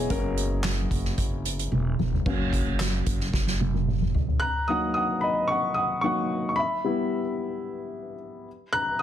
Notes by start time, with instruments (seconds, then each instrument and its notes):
Already playing: grand piano F#3 A#3 B3 C#4 E4 F#4 G#4 C#5 D#5
0.10 upright bass F#1, grand piano F#3 A#3 C#4 A#4, kick, closed hi-hat
0.37 closed hi-hat
0.64 snare, clap, closed hi-hat
0.91 upright bass F#1, kick, closed hi-hat
1.05 snare
1.18 upright bass F#1, kick, closed hi-hat
1.45 closed hi-hat
1.59 closed hi-hat
1.72 upright bass E1, high tom
1.99 upright bass E1, mid tom
2.13 floor tom
2.26 upright bass F#1, grand piano F#3 A#3 C#4, kick, crash
2.53 kick, closed hi-hat
2.66 upright bass F#1
2.80 snare, clap, closed hi-hat
3.06 upright bass F#1, kick, closed hi-hat
3.20 snare
3.34 upright bass F#1, kick, snare
3.47 snare
3.61 high tom
3.74 high tom
3.88 mid tom
4.02 mid tom
4.14 upright bass C#2, floor tom
4.28 floor tom
4.40 grand piano A#5 F#6
4.68 grand piano F#3 A#3 D#4 F#5 D#6
4.94 grand piano F#5 D#6
5.21 grand piano D#5 B5
5.48 grand piano F#5 C#6
5.74 grand piano F#5 D#6
6.01 grand piano F#3 A#3 D#4 F#5 C#6
6.49 grand piano C#6
6.56 grand piano E5 B5
6.84 grand piano G3 B3 E4
8.73 grand piano A#5 F#6
8.99 grand piano D#6